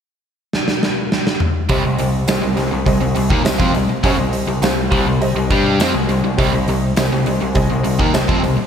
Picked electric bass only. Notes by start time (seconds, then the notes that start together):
1.70 C2
1.85 C2
1.99 C2
2.29 C2
2.44 C2
2.58 C2
2.73 C2
2.86 C2
3.01 C2
3.17 C2
3.30 D#2
3.47 C2
3.60 F2
3.75 C2
3.89 muted picked electric bass stroke
4.04 F#2
4.17 C2
4.47 C2
4.61 C2
4.92 C2
5.05 C2
5.35 C2
5.50 G2
5.80 F2
5.94 C2
6.09 C2
6.24 C2
6.38 C2
6.53 C2
6.68 C2
6.98 C2
7.12 C2
7.27 C2
7.42 C2
7.56 C2
7.71 C2
7.86 C2
8.00 D#2
8.15 C2
8.29 F2
8.44 C2
8.60 muted picked electric bass stroke